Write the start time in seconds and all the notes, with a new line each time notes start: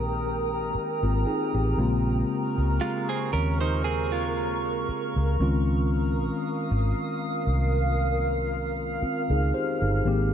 Already playing: A#1 D#3 G#3 A#3 C4 G4 A#4 G5 A#5 D#6
0.75 muted fingered electric bass stroke
1.03 G#1 C4 F4
1.27 D#4 G#4
1.54 A1 C4 G4
1.77 A#1 C#3 G#3 A#3 C4 F4 A#4 C#6
2.58 C#2
2.81 G#3 F4
3.09 C4 G#4
3.33 D#2 C#4 A#4
3.61 D#4 C5
3.84 C4 G#4
4.12 G#3 F4
4.89 muted fingered electric bass stroke
5.16 C#2
5.39 C#2 D#3 G#3 C4 C#4 F4 F5 D#6
6.71 G#1
7.46 C2 F6
9.02 C4 F4, muted fingered electric bass stroke
9.30 C#2 D#4 G#4
9.54 G4 C5
9.82 G1 D#4 G#4
10.05 G#1 D#3 G#3 A#3 C4 G4